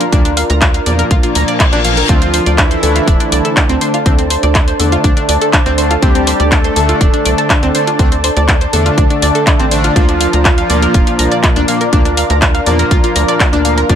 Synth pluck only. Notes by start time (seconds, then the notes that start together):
0.01 A#4 A#5
0.12 D4 D5
0.25 D4 D5
0.37 F5 F6
0.50 A#5 A#6
0.62 F4 F5
0.74 F5 F6
0.86 D5 D6
0.99 A#4 A#5
1.11 F4 F5
1.23 F4 F5
1.35 A#5 A#6
1.48 D5 D6
1.60 F4 F5
1.73 D4 D5
1.85 F5 F6
1.97 A#4 A#5
2.09 C4 C5
2.22 C4 C5
2.34 C5 C6
2.46 D5 D6
2.58 D4 D5
2.71 C5 C6
2.83 A4 A5
2.96 F4 F5
3.08 D4 D5
3.20 D4 D5
3.32 D5 D6
3.45 A4 A5
3.57 D4 D5
3.69 C4 C5
3.81 C5 C6
3.94 F4 F5
4.06 C4 C5
4.19 C4 C5
4.30 C5 C6
4.43 D5 D6
4.55 D4 D5
4.68 C5 C6
4.80 A4 A5
4.92 F4 F5
5.04 D4 D5
5.17 D4 D5
5.29 D5 D6
5.42 A4 A5
5.53 D4 D5
5.66 C4 C5
5.78 C5 C6
5.91 F4 F5
6.02 C4 C5
6.15 C4 C5
6.27 C5 C6
6.40 D5 D6
6.52 D4 D5
6.65 C5 C6
6.76 A4 A5
6.89 F4 F5
7.01 D4 D5
7.14 D4 D5
7.25 D5 D6
7.38 A4 A5
7.50 D4 D5
7.63 C4 C5
7.75 C5 C6
7.87 F4 F5
7.99 C4 C5
8.12 C4 C5
8.24 C5 C6
8.37 D5 D6
8.48 D4 D5
8.61 C5 C6
8.73 A4 A5
8.86 F4 F5
8.98 D4 D5
9.10 D4 D5
9.22 D5 D6
9.35 A4 A5
9.47 D4 D5
9.60 C4 C5
9.72 C5 C6
9.84 F4 F5
9.96 D4 D5
10.09 D4 D5
10.21 F5 F6
10.33 A#5 A#6
10.45 F4 F5
10.58 F5 F6
10.70 D5 D6
10.83 A#4 A#5
10.94 F4 F5
11.07 F4 F5
11.19 A#5 A#6
11.32 D5 D6
11.44 F4 F5
11.56 D4 D5
11.68 F5 F6
11.81 A#4 A#5
11.93 D4 D5
12.05 D4 D5
12.17 F5 F6
12.30 A#5 A#6
12.42 F4 F5
12.55 F5 F6
12.67 D5 D6
12.79 A#4 A#5
12.91 F4 F5
13.04 F4 F5
13.16 A#5 A#6
13.28 D5 D6
13.40 F4 F5
13.53 D4 D5
13.65 F5 F6
13.77 A#4 A#5
13.89 D4 D5